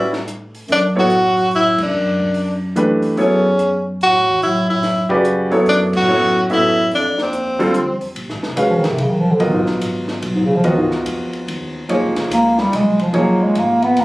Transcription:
Already playing: A2 C#4 E4 F#4 B4 D5
0.13 snare
0.28 closed hi-hat
0.55 open hi-hat
0.68 F#2, open hi-hat
0.72 D4
0.95 A2 F#3 B3 E4 A4 C#5
0.99 F#4
1.10 closed hi-hat
1.37 open hi-hat
1.51 A2, open hi-hat
1.55 E4
1.78 F#2, kick, crash
1.83 D4
1.93 F#2
2.20 kick
2.34 open hi-hat
2.76 E3 A3 D4 G4 B4, closed hi-hat
3.02 muted upright bass stroke, open hi-hat
3.17 E2 F#2 F#3 B3 C#4 E4 A4 C#5, open hi-hat
3.59 closed hi-hat
3.99 A2, open hi-hat
4.03 F#4
4.15 A2
4.28 E2
4.41 F#2 A2 E4, open hi-hat
4.68 A2 E4
4.83 snare, open hi-hat
5.09 C#3 F#4 G4 B4 D5, kick
5.25 closed hi-hat
5.51 F#3 B3 E4 A4 C#5, muted upright bass stroke, open hi-hat
5.66 F#2 D4, open hi-hat
5.93 A2 F#4, kick, crash
6.08 F#3 B3 E4 A4 C#5
6.49 A2 F#3 B3 E4 A4 E5, open hi-hat
6.91 F2 D4, open hi-hat
7.18 D#2, snare
7.23 C4
7.33 closed hi-hat
7.59 D3 G3 C4 F4 A4, open hi-hat
7.74 closed hi-hat
8.01 muted upright bass stroke, open hi-hat
8.15 A#1, ride
8.29 G#1, snare
8.43 F1, snare
8.56 C#2 G#3 C#4 F#4 B4 F5, hi-hat pedal, ride
8.70 A#1 F3
8.78 D#3
8.84 G#1, snare, ride
8.90 C3
8.98 B1 C#3, ride
9.10 D#3
9.20 F3
9.31 D3
9.39 A#1 D#3 F#3 B3 F4 A#4 D#5, ride
9.52 G#2
9.66 snare
9.80 G#1, hi-hat pedal, ride
10.08 snare
10.22 B1, ride
10.35 G#2
10.44 C#3
10.56 F3
10.64 C#2 D#3 B3 F4 F#4 A#4 D#5, ride
10.77 G#2
10.91 snare
11.06 F2, hi-hat pedal, ride
11.33 ride
11.47 D#2, ride
11.89 F2 F3 A#3 D#4 G#4 C#5, ride
12.03 C#2
12.16 A#1, snare, ride
12.30 C#2 A#3, hi-hat pedal, ride
12.58 G3, snare
12.72 B1 G#3, hi-hat pedal, ride
12.99 F3, ride
13.13 A#1 F3 A#3 D#4 G#4 C#5, ride
13.18 F#3
13.43 G#3
13.55 G#1, hi-hat pedal, ride
13.59 A#3
13.82 B3, ride
13.97 C#2 A#3, ride

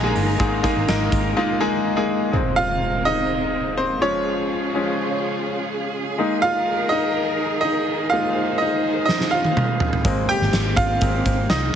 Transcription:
Already playing: A#1 G#2 D#3 G#3 A#3 D#4 G4 G#4 A#4 G#5 A#5
0.03 G#3 A#3 D#4 G#4
0.16 G1, open hi-hat
0.39 G#1 G#2 D#3 G#3 A#3 D#4 G#4, kick, closed hi-hat
0.63 G#3 A#3 D#4 G#4, kick, closed hi-hat
0.76 G#1
0.88 G#1 G#3 A#3 D#4 A#4, snare, closed hi-hat
1.12 G#1, kick, closed hi-hat
1.36 G#3 A#3 D#4 F4
1.60 G#3 A#3 D#4 G#4
1.96 G#3 A#3 D#4 G#4
2.32 G#3 A#3 C4, impact
2.56 F4 F5
3.05 D#4 D#5
3.77 C4 C5
4.01 C#3 F3 G#3 C#4 F4 G#4 C#5
4.74 F3 G#3 C#4
6.18 D#3 G#3 A#3 D#4 A#4
6.42 F4 F5
6.89 D#4 D#5
7.61 D#4 D#5
8.10 G#3 A#3 D#4 F4 C5 F5
8.58 D#4 D#5
9.05 D#4 D#5, snare
9.21 snare
9.31 F4 F5
9.45 high tom
9.57 mid tom
9.80 floor tom
9.93 floor tom
10.05 G#1 G#3 A#3 C4, kick, closed hi-hat
10.29 G4 G5, closed hi-hat
10.42 G#1, snare
10.53 G#1, snare, closed hi-hat
10.76 G#1 F4 F5, kick, closed hi-hat
11.01 G#1 G#3 A#3 C4, kick, closed hi-hat
11.26 G#1, kick, closed hi-hat
11.49 C2 D#4 D#5, snare, closed hi-hat

